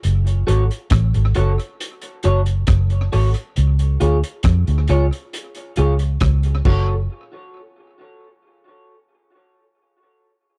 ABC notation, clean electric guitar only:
X:1
M:4/4
L:1/8
Q:1/4=68
K:F#m
V:1 name="Clean electric guitar"
z [FAc] z [FAc] z [FAc] z [FAc] | z [^EGc] z [EGc] z [EGc] z [FAc] | z8 |]